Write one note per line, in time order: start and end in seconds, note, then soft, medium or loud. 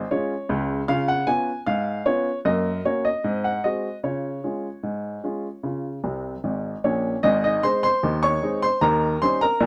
0.11 0.33 G#3 soft
0.11 0.33 C#4 soft
0.11 0.32 F4 soft
0.11 0.48 C#5 medium
0.49 0.81 C#2 medium
0.49 0.81 C#3 medium
0.88 1.22 C#3 medium
0.88 1.12 F4 soft
0.88 1.08 F5 medium
1.08 1.28 F#5 medium
1.27 1.49 B3 soft
1.27 1.49 C#4 soft
1.27 1.49 F4 soft
1.27 1.59 G#5 medium
1.66 2.00 G#2 medium
1.66 2.04 F5 medium
2.06 2.28 B3 soft
2.06 2.28 C#4 soft
2.06 2.29 F4 soft
2.06 2.38 C#5 medium
2.45 2.79 F#2 medium
2.45 2.69 A#3 soft
2.45 2.83 D#5 medium
2.85 3.07 A#3 soft
2.85 3.07 C#4 soft
2.85 3.07 F#4 soft
2.85 3.05 C#5 medium
3.05 3.42 D#5 medium
3.24 3.58 G#2 medium
3.24 3.48 C4 soft
3.44 3.64 F#5 medium
3.64 3.86 G#3 soft
3.64 3.86 C4 soft
3.64 3.87 F#4 soft
3.64 3.96 D#5 medium
4.04 4.38 C#3 medium
4.04 4.27 F4 soft
4.04 6.79 C#5 medium
4.44 4.66 G#3 soft
4.44 4.66 C#4 soft
4.44 4.66 F4 soft
4.83 5.18 G#2 soft
5.23 5.46 G#3 soft
5.23 5.46 C#4 soft
5.23 5.46 F4 soft
5.63 5.98 C#3 medium
5.63 5.87 F4 soft
6.04 6.34 C2 soft
6.04 6.34 C3 soft
6.44 6.74 G#1 soft
6.44 6.74 G#2 soft
6.84 7.14 A#1 soft
6.84 7.14 A#2 soft
6.84 7.21 C#4 soft
6.84 7.16 C#5 medium
7.23 7.57 G#1 medium
7.23 7.57 G#2 medium
7.23 7.42 D#4 medium
7.23 7.42 D#5 medium
7.44 7.63 D#4 medium
7.44 7.63 D#5 medium
7.63 7.85 G#3 soft
7.63 7.85 C4 soft
7.63 7.86 D#4 soft
7.63 7.82 C5 medium
7.63 7.82 C6 medium
7.83 8.21 C5 medium
7.83 8.21 C6 medium
8.03 8.36 D#2 medium
8.03 8.36 D#3 medium
8.23 8.60 C#5 medium
8.23 8.60 C#6 medium
8.42 8.64 G#3 soft
8.42 8.64 C4 soft
8.42 8.64 D#4 medium
8.62 8.81 C5 medium
8.62 8.82 C6 medium
8.81 9.15 D#2 medium
8.81 9.15 D#3 medium
8.81 9.19 A#4 medium
8.81 9.19 A#5 medium
9.22 9.43 G3 soft
9.22 9.44 C#4 soft
9.22 9.44 D#4 medium
9.22 9.40 C5 medium
9.22 9.41 C6 loud
9.41 9.66 A#4 medium
9.41 9.66 A#5 medium
9.60 9.66 A#1 medium
9.60 9.66 A#2 medium